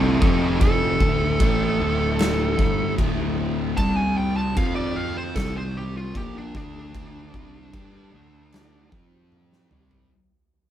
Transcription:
Already playing: C2 C3 D3 G3 A3 C4 E4 A4
0.21 F1 F2 C3 F3 C4 G4 A4, kick
0.61 A4, kick, crash
1.00 D1 D2 A2 D3 A3 E4, kick
1.40 A1 A2 E3 A3, kick, crash
1.79 D1 D2 A2 D3
2.19 snare, crash
2.58 G1 G2 D3 G3, kick
2.98 D1 D2 A2 D3, kick, crash
3.77 C2 C3 G3 C4 A5, kick, crash
3.96 G#5
4.18 G5
4.37 A5
4.56 F2 F3 C4 F4 F5, kick, crash
4.76 D5
4.96 F5
5.17 C5
5.35 C2 C3 G3 C4 A4, kick, snare, crash
5.57 C5
5.77 G4
5.97 F4
6.15 A#1 A#2 F3 A#3 G4, kick, crash
6.38 D4
6.54 D2 D3 A3 D4, kick
6.95 kick, crash
7.34 C2 C3 G3 C4, kick
7.73 G2 G3 D4 G4, kick, crash
8.13 D2 D3 A3 D4
8.52 snare, crash
8.92 F2 F3 C4 F4, kick
9.32 high tom
9.53 snare
9.71 C2 C3 G3 C4, mid tom
9.91 floor tom

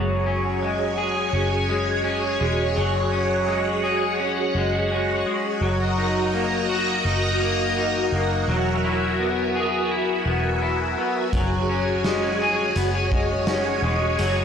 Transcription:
Already playing: F#1 F#3 F#4 G#4 C#5 G#5
0.26 C#4
0.62 G#3
0.98 G#4
1.33 F#1 C#4
1.69 G#3
2.04 C#4
2.40 E1 G#3
2.76 F#1 F#3 F#5
3.12 C#4
3.48 G#3
3.84 G#4
4.20 C#4
4.55 F#1 G#3
4.92 C#4
5.26 G#3
5.61 F#1 F#3 A#4 D#5 A#5
5.98 D#4
6.34 A#3
6.69 F#4
7.05 F#1 D#4
7.41 A#3
7.77 D#4
8.13 F#1 A#3
8.48 E1 F#3 E5 G#5
8.84 E4
9.20 B3
9.56 G#4
9.91 E4
10.26 E1 B3
10.62 E4
10.98 B3
11.33 F#1 F#3 G#4 C#5, kick, closed hi-hat
11.69 C#4
12.04 G#3, snare, closed hi-hat
12.42 G#4
12.76 F#1 B3, closed hi-hat
12.95 C#4
13.12 G#3, kick
13.47 C#4, snare, closed hi-hat
13.82 E1 G#3
14.19 F#1 F#3, closed hi-hat

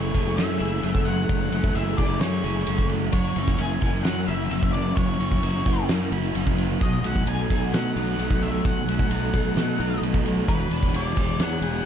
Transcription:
Already playing: F#1 E3 F#3 A3 E4 G#4 C#5
0.14 F#1 E4 G#4, kick, ride
0.36 F#2 F#3 A3 C#4 E5, snare, ride
0.60 F#1 E4 G#4, ride
0.83 F#1 F#3 A3, ride
0.95 kick
1.05 E3 F#3 A3 F#5, ride
1.29 F#1 E3 F#3, kick, ride
1.52 F#1 E3 A3, ride
1.64 kick
1.75 F#1 A3 E4 G#4 E5, ride
1.97 F#1 E4 G#4 D5, kick, ride
2.21 F#2 F#3 A3 C#4 C#5, snare, ride
2.44 F#1 E4 G#4, ride
2.67 F#1 F#3 A3, ride
2.78 kick
2.89 E3 F#3 A3, ride
3.12 F#1 E3 F#3 C#5, kick, ride
3.36 F#1 E3 C#4, ride
3.48 kick, snare
3.57 F#1 A#3 E4 A#4 G#5, ride
3.82 F#1 E4 F#4 A#4, kick, ride
4.03 F#2 F#3 C#4 F#5, snare, ride
4.27 F#1 E4 F#4 E5, ride
4.51 F#1 F#3 A#3 C#4, ride
4.63 kick
4.73 E3 F#3 C#4 D5, ride
4.96 F#1 E3 F#3 C#5, kick, ride
5.20 F#1 E3 C#4, ride
5.32 kick
5.42 F#1 A#3 E4 A#4, ride
5.66 F#1 E4 F#4 A#4, kick, ride
5.89 F#2 F#3 C#4, snare, ride
6.12 F#1 E4 F#4, ride
6.35 F#1 F#3 A#3 C#4, ride
6.47 kick
6.58 E3 F#3 C#4, ride
6.81 B1 B2 F#3 D#5, kick, ride
7.03 B1 F#3 A3 F#5, ride
7.16 kick, snare
7.27 B1 A3 D#4 A4 G#5, ride
7.50 B1 D#4 F#4 A4, kick, ride
7.73 B2 F#3 A3 D#4 F#5, snare, ride
7.96 B1 D#4 F#4, ride
8.19 B1 F#3 A3, ride
8.30 kick
8.42 F#3 A3 E5, ride
8.65 B1 B2 F#3 F#5, kick, ride
8.88 B1 F#3 A3, ride
8.99 kick
9.10 B1 A3 D#4 A4, ride
9.34 B1 D#4 F#4 A4, kick, ride
9.56 B2 F#3 A3 D#4, snare, ride
9.80 B1 D#4 F#4, ride
10.02 B1 F#3 A3, ride
10.14 kick
10.25 F#3 A3, ride
10.48 E1 E3 F#3 B4, kick, ride
10.71 E1 F#3 D4, ride
10.83 kick
10.94 E1 G#4 C#5 D5, ride
11.17 E1 G#4 C#5, kick, ride
11.39 E2 B3 D4 F#5, snare, ride
11.62 E1 G#4, ride

